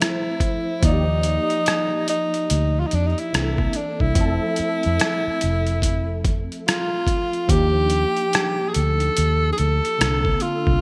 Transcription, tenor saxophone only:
0.01 0.86 E4 medium
0.85 2.08 D#4 medium
2.10 2.81 D#4 medium
2.80 2.88 F4 medium
2.87 2.97 D#4 medium
2.95 3.09 D4 medium
3.07 3.10 D#4 medium
3.07 3.21 D#4 medium
3.19 3.78 E4 medium
3.76 4.03 D4 medium
4.01 6.43 E4 medium
6.67 7.51 F4 medium
7.50 8.70 G4 medium
8.69 8.75 G#4 medium
8.73 9.52 A4 medium
9.52 9.60 G#4 medium
9.58 10.44 A4 loud
10.42 10.81 F4 medium

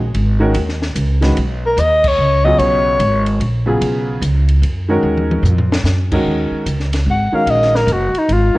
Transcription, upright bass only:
0.00 0.13 A#1 medium
0.15 0.54 G#1 medium
0.55 0.95 D#2 medium
0.96 1.35 C#2 medium
1.37 1.76 B1 medium
1.77 2.17 D#2 medium
2.18 2.58 C#2 medium
2.58 2.98 B1 medium
2.99 3.39 G#1 medium
3.40 3.80 A#1 medium
3.81 4.21 B1 medium
4.21 4.61 C#2 medium
4.62 5.02 F#2 medium
5.03 5.42 D#2 medium
5.43 5.83 F2 medium
5.84 6.24 F#2 medium
6.25 6.49 D#2 medium
6.51 muted upright bass stroke soft
6.66 7.05 C#2 medium
7.06 7.31 G#1 medium
7.32 muted upright bass stroke soft
7.46 7.86 A#1 medium
7.87 8.12 F#1 medium
8.14 muted upright bass stroke soft
8.29 8.54 G#1 medium

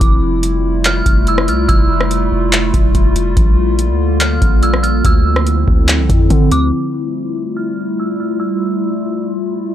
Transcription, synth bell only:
0.85 1.25 F6 loud
1.28 1.48 E6 medium
1.49 1.68 F6 medium
1.69 2.08 E6 loud
4.20 4.60 F6 medium
4.63 4.83 E6 medium
4.83 5.03 F6 medium
5.06 5.45 E6 medium
6.52 6.72 D6 medium
7.57 7.96 F6 medium
8.00 8.19 E6 medium
8.20 8.40 F6 medium
8.40 8.79 E6 loud

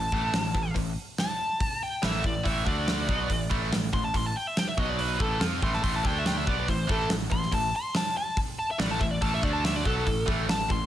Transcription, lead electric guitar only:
0.00 0.74 A5 medium
1.20 1.81 A5 loud
1.83 2.03 G5 medium
2.05 2.25 E5 medium
2.26 2.46 D5 medium
2.48 2.67 E5 medium
2.68 3.49 D5 loud
3.94 4.04 C6 medium
4.05 4.16 A5 medium
4.16 4.26 C6 medium
4.27 4.36 A5 medium
4.36 4.47 G5 medium
4.47 4.58 E5 medium
4.58 4.68 G5 medium
4.68 4.79 E5 medium
4.79 4.89 D#5 medium
4.89 5.00 D5 medium
5.00 5.20 B4 medium
5.21 5.42 A4 medium
5.63 5.74 C6 medium
5.74 5.83 A5 medium
5.84 5.96 C6 medium
5.96 6.05 A5 medium
6.06 6.19 G5 medium
6.19 6.26 E5 medium
6.27 6.37 G5 medium
6.38 6.48 E5 medium
6.48 6.58 D5 medium
6.60 6.69 D5 medium
6.70 6.89 C5 loud
6.91 7.11 A4 loud
7.32 7.52 C6 loud
7.54 7.74 A5 medium
7.76 7.95 C6 loud
7.97 8.16 A5 medium
8.17 8.37 A5 loud
8.59 8.69 A5 loud
8.71 8.80 E5 loud
8.80 8.90 D5 loud
8.91 9.01 A5 loud
9.00 9.11 E5 medium
9.11 9.21 D5 medium
9.22 9.32 A5 loud
9.34 9.44 E5 medium
9.44 9.54 D5 medium
9.53 9.63 A5 medium
9.64 9.76 E5 medium
9.76 9.86 D5 medium
9.86 10.27 A4 loud
10.50 10.70 A5 loud
10.71 10.86 C6 medium

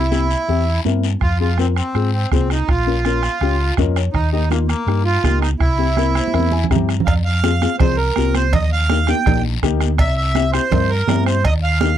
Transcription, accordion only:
0.00 0.81 E4 loud
1.22 1.38 F4 loud
1.40 1.59 F4 medium
1.58 1.66 C4 medium
1.75 2.11 C4 medium
2.12 2.30 C4 medium
2.32 2.49 C4 medium
2.52 2.70 D#4 medium
2.69 3.74 F4 medium
4.13 4.30 D#4 medium
4.32 4.49 D#4 medium
4.50 4.59 A#3 medium
4.68 5.02 A#3 medium
5.05 5.39 F4 loud
5.41 5.49 D#4 medium
5.60 6.66 E4 loud
7.06 7.14 F5 medium
7.25 7.76 F5 medium
7.79 7.96 C5 loud
7.97 8.35 A#4 medium
8.35 8.52 C5 medium
8.54 8.70 D#5 loud
8.72 9.09 F5 loud
9.09 9.42 G5 loud
9.99 10.15 E5 loud
10.16 10.51 E5 medium
10.52 10.90 C5 loud
10.90 11.24 A#4 medium
11.26 11.43 C5 medium
11.46 11.54 D#5 loud
11.63 11.97 F5 loud

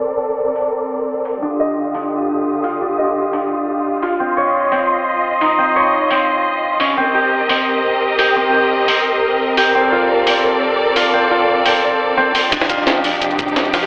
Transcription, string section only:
0.00 1.38 C4 medium
0.00 1.40 A4 medium
0.00 1.38 A#4 medium
0.00 1.40 D5 medium
1.42 4.17 D3 medium
1.42 6.93 F4 medium
1.42 4.17 G4 medium
1.42 4.17 D#6 medium
4.20 6.94 D#5 medium
4.20 6.94 C6 medium
6.97 12.48 C4 medium
6.97 9.72 G4 medium
6.97 12.48 A#4 medium
6.97 9.72 D#5 medium
9.75 12.49 A4 medium
9.75 12.49 D5 medium
12.52 13.87 F3 medium
12.52 13.87 D4 medium
12.52 13.87 D#4 medium
12.52 13.87 G4 medium

